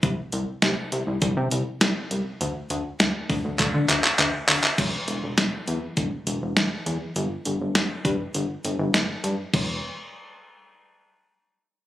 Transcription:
<<
  \new Staff \with { instrumentName = "Analog synth bass" } { \clef bass \time 4/4 \key e \minor \tempo 4 = 101 c,16 r16 c,16 r16 c,16 r16 c,16 c,16 c,16 c16 c,16 r16 c,16 r16 c,16 r16 | d,16 r16 d,16 r16 d,16 r16 d,16 d,16 d,16 d16 d,16 r16 d,16 r16 d,16 r16 | e,,16 r16 e,,16 e,,16 e,,16 r16 e,16 r16 e,,16 r16 e,,16 e,,16 e,,16 r16 e,16 r16 | g,,16 r16 g,,16 g,,16 g,,16 r16 g,16 r16 g,,16 r16 g,,16 g,,16 g,,16 r16 g,16 r16 |
e,,8 r2. r8 | }
  \new DrumStaff \with { instrumentName = "Drums" } \drummode { \time 4/4 <hh bd>8 hh8 <hh sn>8 hh8 <hh bd>8 hh8 <hh sn>8 hh8 | hh8 hh8 <hh sn>8 <hho bd>8 <hc hh bd>8 <hc hh>16 hc16 <hc hh>8 <hc hho>16 hc16 | <cymc hh bd>8 hh8 <hh sn>8 hh8 <hh bd>8 hh8 <hh sn>8 hh8 | hh8 hh8 <hh sn>8 <hh bd>8 hh8 hh8 <hh sn>8 hh8 |
<cymc bd>4 r4 r4 r4 | }
>>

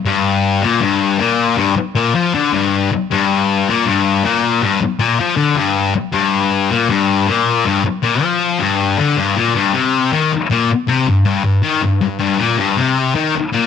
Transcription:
\new Staff \with { instrumentName = "Distorted electric guitar" } { \clef bass \time 4/4 \key g \minor \tempo 4 = 158 g,4. bes,8 g,4 bes,4 | g,8 r8 bes,8 f8 d8 g,4 r8 | g,4. bes,8 g,4 bes,4 | g,8 r8 bes,8 f8 d8 g,4 r8 |
g,4. bes,8 g,4 bes,4 | g,8 r8 bes,8 f4 g,4 d8 | g,8 bes,8 g,8 c4 ees8 r8 bes,8 | r8 c8 g,8 g,8 g,8 ees8 g,8 g,8 |
g,8 bes,8 g,8 c4 ees8 r8 bes,8 | }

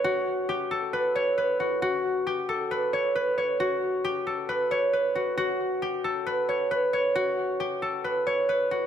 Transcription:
\new Staff \with { instrumentName = "Harp" } { \time 4/4 \key a \mixolydian \tempo 4 = 135 fis'4 g'8 a'8 b'8 cis''8 b'8 fis'8 | fis'4 g'8 a'8 b'8 cis''8 b'8 cis''8 | fis'4 g'8 a'8 b'8 cis''8 b'8 fis'8 | fis'4 g'8 a'8 b'8 cis''8 b'8 cis''8 |
fis'4 g'8 a'8 b'8 cis''8 b'8 fis'8 | }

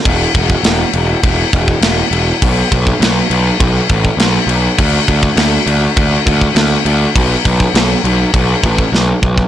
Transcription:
<<
  \new Staff \with { instrumentName = "Picked electric bass" } { \clef bass \time 4/4 \key b \minor \tempo 4 = 101 e,,8 e,,8 e,,8 e,,8 e,,8 e,,8 e,,8 e,,8 | b,,8 b,,8 b,,8 b,,8 b,,8 a,,8 b,,8 b,,8 | d,8 d,8 d,8 d,8 d,8 d,8 d,8 d,8 | b,,8 b,,8 b,,8 b,,8 b,,8 a,,8 b,,8 b,,8 | }
  \new DrumStaff \with { instrumentName = "Drums" } \drummode { \time 4/4 <cymc bd>8 <cymc bd>16 bd16 <cymc sn>8 cymc8 <cymc bd>8 <cymc bd>16 bd16 <cymc sn>8 cymc8 | <cymc bd>8 <cymc bd>16 bd16 <cymc sn>8 cymc8 <cymc bd>8 <cymc bd>16 bd16 <cymc sn>8 cymc8 | <cymc bd>8 <cymc bd>16 bd16 <cymc sn>8 cymc8 <cymc bd>8 <cymc bd>16 bd16 <cymc sn>8 cymc8 | <cymc bd>8 <cymc bd>16 bd16 <cymc sn>8 cymc8 <cymc bd>8 <cymc bd>16 bd16 sn8 bd16 bd16 | }
>>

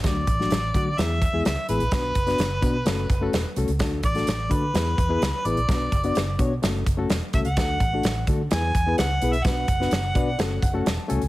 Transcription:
<<
  \new Staff \with { instrumentName = "Harmonica" } { \time 4/4 \key d \lydian \tempo 4 = 128 d''2 e''4 e''8 b'8~ | b'2.~ b'8 r8 | r8 d''4 b'2 d''8~ | d''4. r2 e''16 fis''16~ |
fis''4. r8 gis''4 fis''8. e''16 | fis''2. r4 | }
  \new Staff \with { instrumentName = "Reed electric piano" } { \time 4/4 \key d \lydian << { r1 | r1 | r1 | r1 |
r1 | r4. d''8 fis''8 fis''8 a''8 gis''8 | } \\ { <fis a d' fis'>8 r16 <fis a d' fis'>8 r16 <fis a d' fis'>16 r16 <gis b e' gis'>8 r16 <gis b e' gis'>8 r16 <gis b e' gis'>16 r16 | <b d' fis' b'>8 r16 <b d' fis' b'>8 r16 <b d' fis' b'>16 r16 <a cis' fis' a'>8 r16 <a cis' fis' a'>8 r16 <a cis' fis' a'>16 r16 | <a d' fis' a'>8 r16 <a d' fis' a'>8 r16 <a d' fis' a'>16 r16 <b e' gis' b'>8 r16 <b e' gis' b'>8 r16 <b e' gis' b'>16 r16 | <b d' fis' b'>8 r16 <b d' fis' d''>8 r16 <b d' fis' cis''>16 r16 <a cis' fis' a'>8 r16 <a cis' fis' a'>8 r16 <a cis' fis' a'>16 r16 |
<a d' fis' a'>8 r16 <a d' fis' a'>8 r16 <a d' fis' a'>16 r16 <b e' gis' b'>8 r16 <b e' gis' b'>8 r16 <b e' gis' b'>16 r16 | <b d' fis' b'>8 r16 <b d' fis' b'>8 r16 <b d' fis' b'>16 r16 <a cis' fis' a'>8 r16 <a cis' fis' a'>8 r16 <a cis' fis' a'>16 r16 | } >> }
  \new Staff \with { instrumentName = "Fingered electric bass" } { \clef bass \time 4/4 \key d \lydian d,8 a,,8 a,,8 d8 e,8. e,16 cis,16 r16 a,,16 ais,,16 | r8 fis,,8 fis,,8 b,8 fis,,8 fis,,8 e,,16 r16 bis,,16 cis,16 | r8 a,,8 a,,8 d8 e,8 e,8 cis,16 r16 a,,16 ais,,16 | r8 fis,,8 fis,,8 b,8 fis,,8 fis,,8 e,,16 r16 bis,,16 cis,16 |
d,8 a,,8 a,,8 d8 e,8 e,8 cis,8 b,,8 | b,,8 fis,,8 fis,,8 b,8 fis,,8 fis,,8 e,,16 r16 bis,,16 cis,16 | }
  \new DrumStaff \with { instrumentName = "Drums" } \drummode { \time 4/4 <hh bd sn>8 <hh bd>16 sn16 <hh sn>8 <hh bd>8 <hh sn>8 <hh bd>8 <hh sn>8 hh16 hh16 | <hh bd sn>8 <hh bd>16 <hh sn>16 <hh sn>8 <hh bd>8 <hh sn>8 <hh bd>8 <hh sn>8 hh16 hh16 | <hh bd sn>8 <hh bd>16 <hh sn>16 <hh sn>8 <hh bd>8 <hh sn>8 <hh bd>8 <hh sn>8 hh16 hh16 | <hh bd sn>8 <hh bd>16 hh16 <hh sn>8 <hh bd>8 <hh sn>8 <hh bd>8 <hh sn>8 <hh bd>16 hh16 |
<hh bd sn>8 <hh bd>8 <hh sn>8 <hh bd>8 <hh sn>8 <hh bd>8 <hh sn>8 hh16 hh16 | <hh bd sn>8 <hh bd>16 sn16 <hh sn>8 <hh bd>8 <hh sn>8 <hh bd>8 <hh sn>8 hh16 hh16 | }
>>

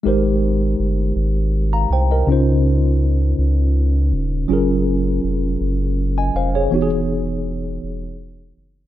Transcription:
<<
  \new Staff \with { instrumentName = "Tine electric piano" } { \time 6/8 \key aes \major \tempo 4. = 54 << { r2 r16 <f'' bes''>16 <c'' g''>16 <bes' ees''>16~ | <bes' ees''>16 r2 r8. | r2 r16 <ees'' aes''>16 <c'' f''>16 <aes' des''>16~ | <aes' des''>16 r2 r8. | } \\ { <aes ees' g' bes' c''>2. | <des des' ees' f' c''>2. | <ges des' f' aes' bes'>2. | <e b dis' fis' g' gis'>2. | } >> }
  \new Staff \with { instrumentName = "Analog synth bass" } { \clef bass \time 6/8 \key aes \major aes,,4 g,,8 aes,,4 c,8 | des,4. des,4 ees,,8 | ges,,4 f,,8 ges,,4 f,,8 | e,,4. e,,4 fis,,8 | }
>>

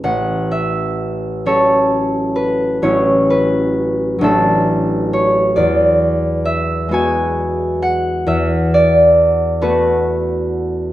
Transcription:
<<
  \new Staff \with { instrumentName = "Harp" } { \time 6/8 \key a \major \tempo 4. = 44 fis''8 e''4 cis''4 b'8 | cis''8 b'4 a'4 cis''8 | d''4 e''8 gis''4 fis''8 | e''8 d''4 b'4. | }
  \new Staff \with { instrumentName = "Harp" } { \time 6/8 \key a \major <a,, cis'>4. <fis cis' a'>4. | <a,, fis cis' e'>4. <a,, fis d' e'>4. | e,4. <gis b fis'>4. | e,4. <a b fis'>4. | }
>>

